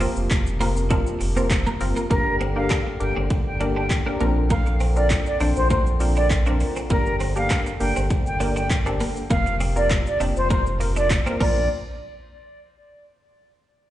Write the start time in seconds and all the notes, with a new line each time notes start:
Already playing: C3 F3 A#3
0.00 A#3 C4 F4 A#4, open hi-hat, shaker
0.16 F1, shaker
0.31 F1, kick, clap, closed hi-hat, shaker
0.47 shaker
0.60 A#3 C4 F4 A#4, open hi-hat, shaker
0.77 shaker
0.90 A#3 C4 D4 F4 A#4, kick, closed hi-hat, shaker
1.07 shaker
1.21 F1, muted clean electric guitar stroke, open hi-hat, shaker
1.36 A#3 C4 F4 A#4, shaker
1.51 kick, clap, closed hi-hat, shaker
1.66 A#3, shaker
1.80 F#1 A#3 C4 F4 A#4, muted clean electric guitar stroke, open hi-hat, shaker
1.97 A#3, shaker
2.10 G1 D3 G3 A#3 D4 G4 A#4, kick, closed hi-hat
2.41 C4, closed hi-hat
2.56 A#3 D4 G4 A#4 F5, muted clean electric guitar stroke
2.70 D4, kick, clap, closed hi-hat
2.87 muted clean electric guitar stroke
3.00 G1 A#3 D4 G4 A#4 G5, closed hi-hat
3.16 G1 C4
3.30 muted clean electric guitar stroke, kick, closed hi-hat
3.46 G5
3.60 A#3 D4 G4 A#4, closed hi-hat
3.76 D4 G5
3.90 muted clean electric guitar stroke, kick, clap, closed hi-hat
4.06 A#3 C4 D4 G4 A#4
4.20 A#1 A#3 C4 D4 F4 A#4, closed hi-hat
4.50 A#3 F5, kick, closed hi-hat, shaker
4.66 muted clean electric guitar stroke, shaker
4.80 C4, open hi-hat, shaker
4.96 C4 D4 F4 A#4 D5, shaker
5.10 kick, clap, closed hi-hat, shaker
5.26 D5, shaker
5.40 A#1 C4 D4 F4 C5, open hi-hat, shaker
5.56 A#1 C5, shaker
5.70 A#3 C5, kick, closed hi-hat, shaker
5.87 shaker
6.00 C4 D4 F4 A#4, muted clean electric guitar stroke, open hi-hat, shaker
6.16 D4 D5, shaker
6.30 kick, clap, closed hi-hat, shaker
6.46 C4 D4 F4 A#4, shaker
6.60 muted clean electric guitar stroke, open hi-hat, shaker
6.76 C4, shaker
6.90 G1 G3 A#3 D4 G4 A#4, kick, closed hi-hat, shaker
7.06 shaker
7.20 C4, open hi-hat, shaker
7.36 A#3 D4 G4 A#4 F5, muted clean electric guitar stroke, shaker
7.50 D4, kick, clap, closed hi-hat, shaker
7.66 muted clean electric guitar stroke, shaker
7.80 G1 A#3 D4 G4 A#4 G5, open hi-hat, shaker
7.96 G1 C4, shaker
8.10 muted clean electric guitar stroke, kick, closed hi-hat, shaker
8.27 G5, shaker
8.40 A#3 D4 G4 A#4, open hi-hat, shaker
8.56 D4 G5, shaker
8.70 muted clean electric guitar stroke, kick, clap, closed hi-hat, shaker
8.86 A#3 C4 D4 G4 A4, shaker
9.00 A#3, open hi-hat, shaker
9.16 shaker
9.30 F1 C3 F3 A#3 C4 F4 A#4 F5, kick, closed hi-hat, shaker
9.46 muted clean electric guitar stroke, shaker
9.60 C4, open hi-hat, shaker
9.76 A#3 C4 F4 A#4 D5, shaker
9.91 kick, clap, closed hi-hat, shaker
10.07 D5, shaker
10.20 F1 A#3 C4 D4 F4 G4, open hi-hat, shaker
10.36 F1 C5, shaker
10.50 A#3 C5, kick, closed hi-hat, shaker
10.66 shaker
10.80 A#3 C4 F4 A#4, muted clean electric guitar stroke, open hi-hat, shaker
10.96 D4 D5, shaker
11.10 kick, clap, closed hi-hat, shaker
11.26 A#3 C4 F4 A#4, shaker
11.40 A#1 A#2 A#3 C4 D4 F4 A#4 D5, kick, crash